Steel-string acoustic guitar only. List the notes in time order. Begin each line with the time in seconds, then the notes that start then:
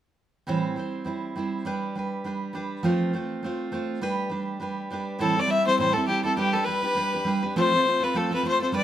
0.47 A2 E3 G3 C4 E4 C5
0.76 G3 C4 E4 C5
1.04 G3 C4 E4 C5
1.36 G3 C4 E4 C5
1.65 G3 D4 G4 B4
1.95 G3 D4 G4 B4
2.24 G3 D4 G4 B4
2.53 G3 D4 G4 B4
2.83 F3 A3 C4 F4 C5
3.13 A3 C4 F4 C5
3.43 A3 C4 F4 C5
3.72 A3 C4 F4 C5
4.01 G3 D4 G4 B4
4.29 G3 D4 G4 B4
4.60 G3 D4 G4 B4
4.90 G3 D4 G4 B4
5.19 A2 E3 G3 C4 E4 A4
5.36 G3 C4 E4 A4
5.47 G3 C4 E4 A4
5.65 G3 C4 E4 A4
5.79 A2 E3 G3 C4 E4 A4
5.94 G3 C4 E4 A4
6.07 G3 C4 E4 A4
6.23 G3 C4 E4 A4
6.37 G3 D4 G4 B4
6.53 D4 G4 B4
6.66 G3 D4 G4 B4
6.83 D4 G4 B4
6.95 G3 D4 G4 B4
7.13 D4 G4 B4
7.25 G3 D4 G4 B4
7.43 D4 G4 B4
7.56 F3 A3 C4 F4 A4
7.72 C4 F4 A4
7.85 A3 C4 F4 A4
8.00 C4 F4 A4
8.14 F3 A3 C4 F4 A4
8.31 C4 F4 A4
8.43 A3 C4 F4 A4
8.59 C4 F4 A4
8.72 G3 D4 G4 B4